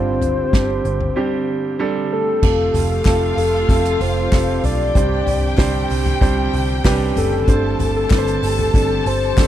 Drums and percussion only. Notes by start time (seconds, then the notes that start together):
0.22 closed hi-hat, floor tom
0.53 kick, snare, closed hi-hat
0.85 closed hi-hat
1.01 floor tom
2.43 kick, crash
2.74 floor tom, hi-hat pedal, open hi-hat
3.05 kick, snare, clap, hi-hat pedal, open hi-hat
3.37 hi-hat pedal, open hi-hat
3.53 open hi-hat
3.69 kick, hi-hat pedal, open hi-hat
3.85 hi-hat pedal
4.00 hi-hat pedal, open hi-hat
4.32 kick, snare, clap, hi-hat pedal, open hi-hat
4.64 floor tom, hi-hat pedal, open hi-hat
4.95 kick, hi-hat pedal, open hi-hat
5.27 floor tom, hi-hat pedal, open hi-hat
5.58 kick, snare, clap, hi-hat pedal, open hi-hat
5.90 hi-hat pedal, open hi-hat
6.06 floor tom
6.21 kick, hi-hat pedal, open hi-hat
6.53 hi-hat pedal, open hi-hat
6.85 kick, snare, clap, hi-hat pedal, open hi-hat
7.16 floor tom, hi-hat pedal, open hi-hat
7.48 kick, hi-hat pedal, open hi-hat
7.79 floor tom, hi-hat pedal, open hi-hat
7.95 open hi-hat
8.10 kick, snare, clap, hi-hat pedal, open hi-hat
8.27 hi-hat pedal
8.43 hi-hat pedal, open hi-hat
8.59 floor tom
8.74 kick, hi-hat pedal, open hi-hat
9.06 hi-hat pedal, open hi-hat
9.37 kick, snare, clap, hi-hat pedal, open hi-hat